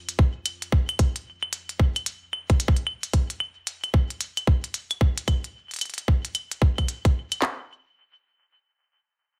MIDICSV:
0, 0, Header, 1, 2, 480
1, 0, Start_track
1, 0, Tempo, 535714
1, 889, Time_signature, 4, 2, 24, 8
1, 8419, End_track
2, 0, Start_track
2, 0, Title_t, "Drums"
2, 77, Note_on_c, 9, 42, 46
2, 167, Note_off_c, 9, 42, 0
2, 168, Note_on_c, 9, 36, 80
2, 258, Note_off_c, 9, 36, 0
2, 408, Note_on_c, 9, 42, 77
2, 408, Note_on_c, 9, 75, 52
2, 498, Note_off_c, 9, 42, 0
2, 498, Note_off_c, 9, 75, 0
2, 557, Note_on_c, 9, 42, 34
2, 647, Note_off_c, 9, 42, 0
2, 648, Note_on_c, 9, 36, 113
2, 738, Note_off_c, 9, 36, 0
2, 797, Note_on_c, 9, 42, 47
2, 797, Note_on_c, 9, 75, 73
2, 887, Note_off_c, 9, 42, 0
2, 887, Note_off_c, 9, 75, 0
2, 888, Note_on_c, 9, 36, 110
2, 888, Note_on_c, 9, 42, 70
2, 978, Note_off_c, 9, 36, 0
2, 978, Note_off_c, 9, 42, 0
2, 1037, Note_on_c, 9, 42, 34
2, 1127, Note_off_c, 9, 42, 0
2, 1277, Note_on_c, 9, 75, 49
2, 1367, Note_off_c, 9, 75, 0
2, 1368, Note_on_c, 9, 42, 74
2, 1458, Note_off_c, 9, 42, 0
2, 1517, Note_on_c, 9, 42, 33
2, 1607, Note_off_c, 9, 42, 0
2, 1609, Note_on_c, 9, 36, 99
2, 1698, Note_off_c, 9, 36, 0
2, 1757, Note_on_c, 9, 42, 32
2, 1757, Note_on_c, 9, 75, 52
2, 1847, Note_off_c, 9, 42, 0
2, 1847, Note_off_c, 9, 75, 0
2, 1848, Note_on_c, 9, 42, 72
2, 1938, Note_off_c, 9, 42, 0
2, 2088, Note_on_c, 9, 75, 77
2, 2178, Note_off_c, 9, 75, 0
2, 2237, Note_on_c, 9, 36, 80
2, 2237, Note_on_c, 9, 42, 33
2, 2327, Note_off_c, 9, 36, 0
2, 2327, Note_off_c, 9, 42, 0
2, 2328, Note_on_c, 9, 42, 76
2, 2403, Note_on_c, 9, 36, 98
2, 2418, Note_off_c, 9, 42, 0
2, 2477, Note_on_c, 9, 42, 34
2, 2493, Note_off_c, 9, 36, 0
2, 2567, Note_off_c, 9, 42, 0
2, 2568, Note_on_c, 9, 75, 49
2, 2658, Note_off_c, 9, 75, 0
2, 2717, Note_on_c, 9, 42, 48
2, 2807, Note_off_c, 9, 42, 0
2, 2809, Note_on_c, 9, 36, 106
2, 2809, Note_on_c, 9, 42, 74
2, 2898, Note_off_c, 9, 36, 0
2, 2898, Note_off_c, 9, 42, 0
2, 2957, Note_on_c, 9, 42, 34
2, 3047, Note_off_c, 9, 42, 0
2, 3049, Note_on_c, 9, 75, 54
2, 3138, Note_off_c, 9, 75, 0
2, 3288, Note_on_c, 9, 42, 78
2, 3378, Note_off_c, 9, 42, 0
2, 3438, Note_on_c, 9, 42, 34
2, 3438, Note_on_c, 9, 75, 76
2, 3527, Note_off_c, 9, 42, 0
2, 3527, Note_off_c, 9, 75, 0
2, 3528, Note_on_c, 9, 36, 102
2, 3618, Note_off_c, 9, 36, 0
2, 3677, Note_on_c, 9, 42, 33
2, 3767, Note_off_c, 9, 42, 0
2, 3769, Note_on_c, 9, 42, 74
2, 3858, Note_off_c, 9, 42, 0
2, 3917, Note_on_c, 9, 42, 46
2, 3917, Note_on_c, 9, 75, 51
2, 4007, Note_off_c, 9, 42, 0
2, 4007, Note_off_c, 9, 75, 0
2, 4008, Note_on_c, 9, 36, 73
2, 4098, Note_off_c, 9, 36, 0
2, 4157, Note_on_c, 9, 42, 34
2, 4247, Note_off_c, 9, 42, 0
2, 4249, Note_on_c, 9, 42, 77
2, 4338, Note_off_c, 9, 42, 0
2, 4397, Note_on_c, 9, 42, 33
2, 4397, Note_on_c, 9, 75, 51
2, 4487, Note_off_c, 9, 42, 0
2, 4487, Note_off_c, 9, 75, 0
2, 4488, Note_on_c, 9, 36, 104
2, 4578, Note_off_c, 9, 36, 0
2, 4637, Note_on_c, 9, 42, 50
2, 4727, Note_off_c, 9, 42, 0
2, 4728, Note_on_c, 9, 36, 107
2, 4728, Note_on_c, 9, 42, 73
2, 4728, Note_on_c, 9, 75, 74
2, 4818, Note_off_c, 9, 36, 0
2, 4818, Note_off_c, 9, 42, 0
2, 4818, Note_off_c, 9, 75, 0
2, 4877, Note_on_c, 9, 42, 35
2, 4967, Note_off_c, 9, 42, 0
2, 5117, Note_on_c, 9, 42, 15
2, 5140, Note_off_c, 9, 42, 0
2, 5140, Note_on_c, 9, 42, 18
2, 5163, Note_off_c, 9, 42, 0
2, 5163, Note_on_c, 9, 42, 19
2, 5186, Note_off_c, 9, 42, 0
2, 5186, Note_on_c, 9, 42, 22
2, 5208, Note_off_c, 9, 42, 0
2, 5208, Note_on_c, 9, 42, 79
2, 5208, Note_on_c, 9, 75, 55
2, 5246, Note_off_c, 9, 42, 0
2, 5246, Note_on_c, 9, 42, 27
2, 5283, Note_off_c, 9, 42, 0
2, 5283, Note_on_c, 9, 42, 28
2, 5298, Note_off_c, 9, 75, 0
2, 5320, Note_off_c, 9, 42, 0
2, 5320, Note_on_c, 9, 42, 31
2, 5357, Note_off_c, 9, 42, 0
2, 5357, Note_on_c, 9, 42, 35
2, 5447, Note_off_c, 9, 42, 0
2, 5448, Note_on_c, 9, 36, 97
2, 5538, Note_off_c, 9, 36, 0
2, 5597, Note_on_c, 9, 42, 35
2, 5687, Note_off_c, 9, 42, 0
2, 5688, Note_on_c, 9, 42, 76
2, 5688, Note_on_c, 9, 75, 54
2, 5778, Note_off_c, 9, 42, 0
2, 5778, Note_off_c, 9, 75, 0
2, 5837, Note_on_c, 9, 42, 48
2, 5927, Note_off_c, 9, 42, 0
2, 5928, Note_on_c, 9, 36, 73
2, 6018, Note_off_c, 9, 36, 0
2, 6077, Note_on_c, 9, 36, 74
2, 6077, Note_on_c, 9, 42, 34
2, 6077, Note_on_c, 9, 75, 78
2, 6167, Note_off_c, 9, 36, 0
2, 6167, Note_off_c, 9, 42, 0
2, 6167, Note_off_c, 9, 75, 0
2, 6169, Note_on_c, 9, 42, 80
2, 6258, Note_off_c, 9, 42, 0
2, 6317, Note_on_c, 9, 36, 98
2, 6317, Note_on_c, 9, 42, 36
2, 6407, Note_off_c, 9, 36, 0
2, 6407, Note_off_c, 9, 42, 0
2, 6557, Note_on_c, 9, 42, 49
2, 6557, Note_on_c, 9, 75, 52
2, 6647, Note_off_c, 9, 42, 0
2, 6647, Note_off_c, 9, 75, 0
2, 6648, Note_on_c, 9, 38, 99
2, 6648, Note_on_c, 9, 39, 82
2, 6738, Note_off_c, 9, 38, 0
2, 6738, Note_off_c, 9, 39, 0
2, 8419, End_track
0, 0, End_of_file